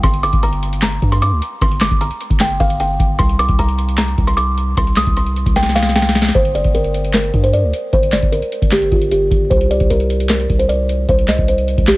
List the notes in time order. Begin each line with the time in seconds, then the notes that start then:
0.03 G1 C6, kick, closed hi-hat
0.14 closed hi-hat
0.23 D6, closed hi-hat
0.33 G1, kick, closed hi-hat
0.43 G1 A#5, closed hi-hat
0.53 closed hi-hat
0.63 closed hi-hat
0.73 closed hi-hat
0.82 A#5, snare, clap, closed hi-hat
0.92 closed hi-hat
1.02 G2, kick, closed hi-hat
1.12 C6, closed hi-hat
1.22 D6, closed hi-hat
1.32 D2
1.42 closed hi-hat
1.61 G1 C6, kick, closed hi-hat
1.72 closed hi-hat
1.81 D6, snare, clap, closed hi-hat
1.91 G1, kick, closed hi-hat
2.01 A#5, closed hi-hat
2.11 closed hi-hat
2.21 closed hi-hat
2.30 G1, kick, closed hi-hat
2.40 G5, snare, clap, closed hi-hat
2.50 closed hi-hat
2.60 G1 F5, kick, closed hi-hat
2.70 closed hi-hat
2.80 G5, closed hi-hat
3.00 G1, kick, closed hi-hat
3.19 C2 C6, kick, closed hi-hat
3.29 closed hi-hat
3.39 D6, closed hi-hat
3.49 C2, kick, closed hi-hat
3.59 C2 A#5, closed hi-hat
3.69 closed hi-hat
3.79 closed hi-hat
3.89 closed hi-hat
3.98 A#5, snare, clap, closed hi-hat
4.08 closed hi-hat
4.18 C2, kick, closed hi-hat
4.27 C6, closed hi-hat
4.37 D6, closed hi-hat
4.58 closed hi-hat
4.77 C2 C6, kick, closed hi-hat
4.87 closed hi-hat
4.96 D#6, snare, clap, closed hi-hat
5.06 C2, kick, closed hi-hat
5.17 C6, closed hi-hat
5.26 closed hi-hat
5.36 closed hi-hat
5.46 C2, kick, closed hi-hat
5.56 G5, snare, closed hi-hat
5.63 snare, closed hi-hat
5.69 snare
5.75 F5, snare, closed hi-hat
5.82 snare, closed hi-hat
5.89 snare
5.96 G5, snare, closed hi-hat
6.02 snare
6.09 snare
6.15 snare, closed hi-hat
6.22 snare
6.28 snare
6.35 G1 C5, kick, closed hi-hat
6.45 closed hi-hat
6.55 D5, closed hi-hat
6.64 G1, kick, closed hi-hat
6.74 G1 A#4, closed hi-hat
6.84 closed hi-hat
6.94 closed hi-hat
7.04 closed hi-hat
7.13 A#4, snare, clap, closed hi-hat
7.24 closed hi-hat
7.34 G2, kick, closed hi-hat
7.43 C5, closed hi-hat
7.53 D5, closed hi-hat
7.63 D2
7.74 closed hi-hat
7.93 G1 C5, kick, closed hi-hat
8.03 closed hi-hat
8.12 D5, snare, clap, closed hi-hat
8.22 G1, kick, closed hi-hat
8.32 A#4, closed hi-hat
8.42 closed hi-hat
8.52 closed hi-hat
8.62 G1, kick, closed hi-hat
8.71 G4, snare, clap, closed hi-hat
8.82 closed hi-hat
8.92 G1 F4, kick, closed hi-hat
9.02 closed hi-hat
9.11 G4, closed hi-hat
9.31 G1, kick, closed hi-hat
9.50 C2 C5, kick, closed hi-hat
9.61 closed hi-hat
9.71 D5, closed hi-hat
9.80 C2, kick, closed hi-hat
9.90 C2 A#4, closed hi-hat
10.00 closed hi-hat
10.10 closed hi-hat
10.20 closed hi-hat
10.29 A#4, snare, clap, closed hi-hat
10.40 closed hi-hat
10.50 C2, kick, closed hi-hat
10.59 C5, closed hi-hat
10.69 D5, closed hi-hat
10.89 closed hi-hat
11.09 C2 C5, kick, closed hi-hat
11.19 closed hi-hat
11.28 D#5, snare, clap, closed hi-hat
11.38 C2, kick, closed hi-hat
11.48 C5, closed hi-hat
11.58 closed hi-hat
11.68 closed hi-hat
11.78 C2, kick, closed hi-hat
11.87 G4, snare, clap, closed hi-hat